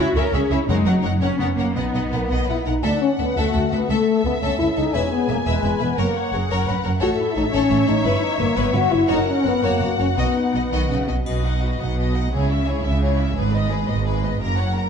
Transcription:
Already playing: cello section E4, viola section F#4
0.15 double bass section C#2, cello section C#4, violin section G#4 C#5 E5, viola section A#4
0.32 double bass section C#2, violin section G#4 C#5 E5, viola section G#4
0.50 double bass section C#2, viola section E4, violin section G#4 C#5 E5
0.67 double bass section F#1, timpani F#2, cello section G#3, viola section D#4, violin section A#4 C#5 F#5
0.85 double bass section F#1, cello section F#3, violin section A#4 C#5 F#5
1.03 double bass section F#1, violin section A#4 C#5 F#5
1.21 double bass section F#1, viola section C#4, cello section C#4, violin section A#4 C#5 F#5
1.39 double bass section F#1, cello section B3, violin section A#4 C#5 F#5
1.57 double bass section F#1, cello section A#3, violin section A#4 C#5 F#5
1.75 double bass section B1, cello section B3, viola section D#4, violin section B4 D#5 F#5
1.94 double bass section B1, violin section B4 D#5 F#5
2.11 double bass section B1, french horn section A#3, violin section B4 D#5 F#5
2.29 double bass section B1, french horn section B3, violin section D#5 F#5
2.47 double bass section B1, french horn section E4, violin section B4 F#5
2.66 double bass section B1, french horn section D#4, violin section A#4 F#5
2.83 cello section D2, double bass section D2, french horn section D4, violin section A4 E5 F#5
3.02 french horn section C#4
3.19 cello section D2, double bass section D2, french horn section B3, violin section A4 E5
3.36 cello section D2, double bass section D2, french horn section A3, viola section F#4, violin section A4 E5
3.53 cello section D2, double bass section D2, violin section A4 E5
3.72 cello section D2, double bass section D2, french horn section B3, violin section A4 E5
3.88 cello section C#2, double bass section C#2, french horn section A3, violin section A4 E5, viola section A4
4.24 cello section C#2, double bass section C#2, french horn section B3, violin section A4 E5
4.42 double bass section C#2, cello section C#2, french horn section C#4, violin section A4 E5, viola section A4
4.58 cello section C#2, double bass section C#2, french horn section E4, violin section A4 E5
4.76 cello section C#2, double bass section C#2, french horn section D#4, violin section A4 E5
4.93 double bass section E1, cello section E2, french horn section C#4, viola section G#4, violin section B4 E5 G#5
5.12 french horn section B3
5.29 double bass section E1, cello section E2, french horn section A#3, violin section B4 E5
5.46 double bass section E1, cello section E2, french horn section G#3, violin section B4 E5, viola section B4
5.63 double bass section E1, cello section E2, violin section B4 E5
5.80 double bass section E1, cello section E2, french horn section B3, violin section B4 E5
5.98 double bass section F#1, cello section F#2, french horn section A#3, violin section A#4 C#5 F#5, viola section A#4
6.16 viola section C#5
6.32 double bass section F#1, cello section F#2, viola section G#4, violin section A#4 C#5
6.50 double bass section F#1, cello section F#2, violin section A#4 C#5, viola section A#4
6.67 double bass section F#1, cello section F#2, violin section A#4 C#5, viola section B4
6.83 double bass section F#1, cello section F#2, viola section A#4, violin section A#4 C#5
7.00 double bass section A1, cello section A2, french horn section F#4, violin section A4 C#5 E5, viola section A4
7.19 french horn section E4
7.36 double bass section A1, cello section A2, french horn section D#4, violin section A4 C#5
7.52 double bass section A1, cello section A2, french horn section C#4, violin section A4 C#5, viola section C#5
7.70 double bass section A1, cello section A2, violin section A4 C#5
7.86 double bass section A1, cello section A2, french horn section D#4, violin section A4 C#5
8.03 double bass section G1, cello section G2, french horn section E4, violin section B4
8.23 french horn section D#4
8.39 double bass section G1, cello section G2, french horn section A#3, violin section B4
8.56 double bass section G1, cello section G2, french horn section B3, violin section B4
8.73 double bass section G1, cello section G2, french horn section F#4, violin section B4
8.91 double bass section G1, cello section G2, french horn section E4, violin section B4
9.08 double bass section F#1, cello section F#2, french horn section D#4, violin section F#4 C#5 F#5, viola section A#4
9.28 french horn section C#4
9.44 double bass section F#1, cello section F#2, french horn section B3, violin section F#4 C#5
9.62 double bass section F#1, cello section F#2, french horn section A#3, viola section F#4, violin section F#4 C#5
9.80 double bass section F#1, cello section F#2, violin section F#4 C#5
9.98 double bass section F#1, cello section F#2, french horn section C#4, violin section F#4 C#5
10.17 double bass section B1, cello section B2, french horn section B3, viola section D#4, violin section F#4 D#5
10.53 double bass section B1, cello section B2, violin section F#4 D#5
10.71 double bass section B1, cello section D#3, violin section F#4 D#5
10.89 double bass section B1, cello section C#3, violin section F#4 D#5
11.07 double bass section B1, cello section B2, violin section F#4 D#5
11.26 double bass section B1, cello section B2, viola section F#4, violin section B4 D#5, triangle
11.45 viola section D#4, violin section D#5 F#5
11.62 viola section F#4, violin section B4 D#5
11.80 double bass section B1, cello section B2, viola section D#4, violin section D#5 F#5
11.98 viola section F#4, violin section B4 D#5
12.15 viola section D#4, violin section D#5 F#5
12.32 double bass section C#2, cello section C#3, viola section E4, violin section G#4 C#5
12.50 viola section C#4, violin section E4 E5
12.66 viola section E4, violin section G#4 C#5
12.83 double bass section C#2, cello section C#3, viola section C#4, violin section E4 E5
13.01 viola section E4, violin section G#4 C#5
13.18 viola section C#4, violin section E4 E5
13.35 double bass section G#1, cello section G#2, viola section G#3, violin section G#4 B4
13.52 viola section B3, violin section B4 D#5
13.69 viola section G#3, violin section G#4 B4
13.87 double bass section G#1, cello section G#2, viola section B3, violin section B4 D#5
14.04 viola section G#3, violin section G#4 B4
14.22 viola section B3, violin section B4 D#5
14.40 double bass section F#1, cello section F#2, viola section A#3, violin section A#4 A#5
14.58 viola section C#4, violin section C#5 F#5
14.77 viola section A#3, violin section A#4 A#5

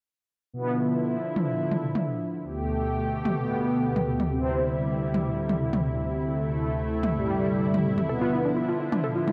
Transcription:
0.53 analog synth pad D3 F3 E4, analog polysynth B3
1.36 mid tom
1.72 mid tom
1.95 mid tom
2.42 analog synth pad D2 B2 A3 G4
3.25 mid tom
3.37 analog polysynth B3
3.96 mid tom
4.20 mid tom
4.31 analog synth pad C3 G3 E4, analog polysynth C4
5.14 mid tom
5.49 mid tom
5.73 mid tom
6.20 analog synth pad A3
7.03 mid tom
7.15 analog polysynth G3
7.74 mid tom
7.98 mid tom
8.09 analog synth pad D3 F3, analog polysynth B3, synth arpeggio sound A4
8.21 synth arpeggio sound F4
8.33 synth arpeggio sound E4
8.45 synth arpeggio sound D4
8.57 synth arpeggio sound E4
8.69 synth arpeggio sound F4
8.80 synth arpeggio sound E4
8.92 synth arpeggio sound D4, mid tom
9.04 synth arpeggio sound A4
9.16 synth arpeggio sound F4
9.27 synth arpeggio sound E4, mid tom

